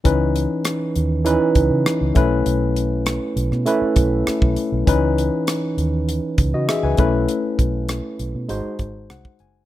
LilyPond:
<<
  \new Staff \with { instrumentName = "Tine electric piano" } { \time 4/4 \key cis \minor \tempo 4 = 99 << { r1 | r1 | r2 r8. <fis' dis''>16 <gis' e''>16 <b' gis''>8 r16 | r2. fis''8 gis''8 | } \\ { <e cis' dis' b'>2 <e cis' dis' b'>4. <a cis' e' b'>8~ | <a cis' e' b'>4. r8 <a cis' e' b'>2 | <e cis' dis' b'>2 r4. <a cis' e' b'>8~ | <a cis' e' b'>4. r8 <gis dis' fis' bis'>2 | } >> }
  \new Staff \with { instrumentName = "Fingered electric bass" } { \clef bass \time 4/4 \key cis \minor cis,8. r8. dis,8. r16 cis,16 cis16 r16 cis,16 b,,8 | b,,4~ b,,16 r16 b,,16 b,16 r8 b,,8 r16 b,,16 r16 b,,16 | cis,8. r8. dis,8. r16 cis,16 cis16 r16 cis,16 b,,8 | r8 b,,8. r16 b,,16 b,16 gis,,16 r16 gis,,8 bis,,16 r16 fis,,8 | }
  \new DrumStaff \with { instrumentName = "Drums" } \drummode { \time 4/4 <hh bd>8 hh8 <hh ss>8 hh8 hh8 <hh bd>8 <hh ss>8 <hh bd>8 | hh8 hh8 <hh ss>8 hh16 ss16 hh8 <hh bd>8 <hh ss>16 bd16 hh8 | <hh bd>8 hh8 <hh ss>8 hh8 hh8 <hh bd>8 <hh ss>8 <hh bd>8 | hh8 <hh bd>8 <hh ss>8 hh8 hh8 <hh bd>8 <hh ss>16 bd16 hh8 | }
>>